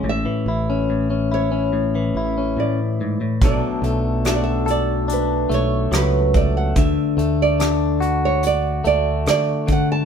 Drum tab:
HH |--------|xxxxxxxx|xxxxxxxx|
SD |--------|--r---r-|--r---r-|
BD |--------|o------o|o------o|